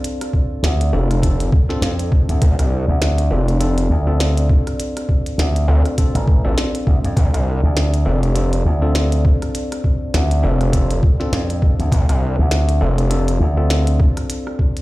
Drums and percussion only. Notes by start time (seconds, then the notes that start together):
0.04 closed hi-hat
0.21 cross-stick, closed hi-hat
0.33 kick
0.64 snare, closed hi-hat
0.81 closed hi-hat
1.11 cross-stick, closed hi-hat
1.23 kick, closed hi-hat
1.40 closed hi-hat
1.52 kick
1.70 snare
1.82 snare, closed hi-hat
1.99 closed hi-hat
2.12 kick
2.29 closed hi-hat
2.42 kick, closed hi-hat
2.59 cross-stick, closed hi-hat
3.02 snare, closed hi-hat
3.18 closed hi-hat
3.48 closed hi-hat
3.61 closed hi-hat
3.78 closed hi-hat
4.20 snare, closed hi-hat
4.38 closed hi-hat
4.49 kick
4.67 cross-stick, closed hi-hat
4.80 closed hi-hat
4.97 cross-stick, closed hi-hat
5.09 kick
5.26 closed hi-hat
5.39 snare, closed hi-hat
5.56 closed hi-hat
5.86 cross-stick, closed hi-hat
5.98 kick, closed hi-hat
6.15 closed hi-hat
6.28 kick
6.58 snare, closed hi-hat
6.75 closed hi-hat
6.87 kick
7.05 closed hi-hat
7.17 kick, closed hi-hat
7.34 cross-stick, closed hi-hat
7.77 snare, closed hi-hat
7.94 closed hi-hat
8.23 closed hi-hat
8.36 closed hi-hat
8.53 closed hi-hat
8.95 snare, closed hi-hat
9.12 closed hi-hat
9.25 kick
9.42 cross-stick, closed hi-hat
9.55 closed hi-hat
9.72 cross-stick, closed hi-hat
9.84 kick
10.14 snare, closed hi-hat
10.31 closed hi-hat
10.61 cross-stick, closed hi-hat
10.73 kick, closed hi-hat
10.91 closed hi-hat
11.03 kick
11.21 snare
11.33 snare, closed hi-hat
11.50 closed hi-hat
11.62 kick
11.80 closed hi-hat
11.92 kick, closed hi-hat
12.09 cross-stick, closed hi-hat
12.51 snare, closed hi-hat
12.69 closed hi-hat
12.98 closed hi-hat
13.11 closed hi-hat
13.28 closed hi-hat
13.70 snare, closed hi-hat
13.87 closed hi-hat
14.00 kick
14.17 cross-stick, closed hi-hat
14.30 closed hi-hat
14.47 cross-stick
14.59 kick
14.77 closed hi-hat